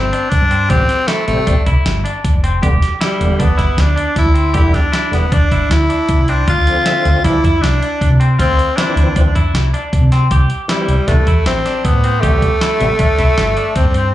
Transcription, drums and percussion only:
0.13 closed hi-hat soft
0.32 kick medium
0.32 closed hi-hat medium
0.51 closed hi-hat soft
0.70 kick medium
0.70 closed hi-hat medium
0.89 snare soft
0.89 closed hi-hat soft
1.08 snare loud
1.08 closed hi-hat medium
1.28 closed hi-hat soft
1.47 kick medium
1.47 closed hi-hat medium
1.66 kick medium
1.66 closed hi-hat soft
1.86 snare medium
1.86 closed hi-hat medium
2.06 closed hi-hat medium
2.25 kick medium
2.25 closed hi-hat medium
2.44 closed hi-hat medium
2.63 kick loud
2.63 closed hi-hat medium
2.82 snare soft
2.82 closed hi-hat medium
3.01 snare loud
3.01 closed hi-hat medium
3.21 closed hi-hat medium
3.40 kick medium
3.40 closed hi-hat medium
3.59 kick medium
3.59 snare soft
3.59 closed hi-hat soft
3.78 snare medium
3.78 closed hi-hat medium
3.97 closed hi-hat medium
4.16 kick medium
4.16 snare soft
4.16 closed hi-hat medium
4.35 closed hi-hat medium
4.54 kick medium
4.54 closed hi-hat medium
4.74 kick medium
4.74 snare soft
4.74 closed hi-hat soft
4.93 snare medium
4.93 closed hi-hat medium
5.13 snare soft
5.13 closed hi-hat medium
5.32 kick medium
5.32 closed hi-hat medium
5.51 kick medium
5.51 closed hi-hat soft
5.71 snare medium
5.71 closed hi-hat medium
5.90 closed hi-hat medium
6.09 kick loud
6.09 closed hi-hat medium
6.28 closed hi-hat soft
6.48 kick medium
6.48 closed hi-hat medium
6.67 closed hi-hat soft
6.86 snare loud
6.86 closed hi-hat medium
7.05 closed hi-hat soft
7.24 kick medium
7.24 closed hi-hat medium
7.44 kick medium
7.44 closed hi-hat soft
7.64 snare medium
7.64 closed hi-hat medium
7.82 closed hi-hat soft
8.01 kick medium
8.01 closed hi-hat medium
8.21 closed hi-hat soft
8.39 kick medium
8.39 closed hi-hat medium
8.59 closed hi-hat soft
8.78 snare medium
8.78 closed hi-hat medium
8.97 closed hi-hat medium
9.16 kick medium
9.16 closed hi-hat medium
9.35 kick medium
9.35 closed hi-hat medium
9.55 snare medium
9.55 closed hi-hat medium
9.74 closed hi-hat soft
9.93 kick medium
9.93 closed hi-hat medium
10.12 snare soft
10.12 closed hi-hat medium
10.31 kick medium
10.31 closed hi-hat medium
10.50 closed hi-hat soft
10.69 snare loud
10.69 closed hi-hat medium
10.89 closed hi-hat medium
11.08 kick medium
11.08 snare soft
11.08 closed hi-hat medium
11.27 kick medium
11.27 closed hi-hat soft
11.46 snare medium
11.46 closed hi-hat medium
11.66 snare soft
11.66 closed hi-hat medium
11.85 kick loud
11.85 closed hi-hat medium
12.04 closed hi-hat medium
12.23 kick medium
12.23 closed hi-hat medium
12.42 kick medium
12.42 closed hi-hat soft
12.61 snare loud
12.61 closed hi-hat medium
12.80 closed hi-hat medium
12.99 kick medium
12.99 closed hi-hat medium
13.18 kick medium
13.18 snare soft
13.18 closed hi-hat soft
13.38 snare medium
13.38 closed hi-hat medium
13.57 closed hi-hat soft
13.76 kick medium
13.76 closed hi-hat medium
13.94 closed hi-hat soft

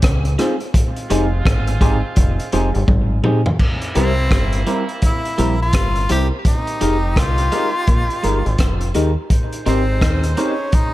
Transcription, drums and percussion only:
0.02 kick loud
0.02 cross-stick loud
0.02 closed hi-hat loud
0.25 closed hi-hat soft
0.39 cross-stick medium
0.39 closed hi-hat medium
0.60 closed hi-hat soft
0.74 kick loud
0.74 closed hi-hat medium
0.96 closed hi-hat soft
1.10 closed hi-hat medium
1.45 kick loud
1.45 cross-stick loud
1.45 closed hi-hat medium
1.67 closed hi-hat medium
1.81 kick medium
1.81 closed hi-hat medium
2.16 kick loud
2.16 closed hi-hat medium
2.40 closed hi-hat soft
2.52 closed hi-hat medium
2.75 closed hi-hat soft
2.88 kick loud
2.88 high tom medium
3.24 mid tom medium
3.46 floor tom medium
3.59 kick loud
3.59 crash medium
3.82 closed hi-hat soft
3.95 closed hi-hat medium
4.31 kick loud
4.31 cross-stick loud
4.31 closed hi-hat medium
4.53 closed hi-hat medium
4.67 closed hi-hat medium
4.89 closed hi-hat soft
5.02 kick medium
5.02 closed hi-hat medium
5.25 closed hi-hat soft
5.38 closed hi-hat medium
5.73 kick loud
5.73 cross-stick loud
5.73 closed hi-hat loud
5.96 closed hi-hat medium
6.09 cross-stick medium
6.09 closed hi-hat medium
6.45 kick loud
6.45 closed hi-hat medium
6.67 closed hi-hat soft
6.81 closed hi-hat medium
7.16 kick loud
7.16 cross-stick loud
7.16 closed hi-hat medium
7.38 closed hi-hat medium
7.52 closed hi-hat medium
7.87 kick loud
7.87 closed hi-hat medium
8.10 closed hi-hat soft
8.24 closed hi-hat medium
8.46 closed hi-hat soft
8.58 kick loud
8.58 cross-stick loud
8.58 closed hi-hat loud
8.81 closed hi-hat soft
8.95 closed hi-hat medium
9.30 kick loud
9.30 closed hi-hat medium
9.53 closed hi-hat soft
9.66 closed hi-hat medium
10.01 kick loud
10.01 cross-stick loud
10.01 closed hi-hat medium
10.23 closed hi-hat medium
10.37 closed hi-hat medium
10.72 kick loud
10.72 closed hi-hat medium

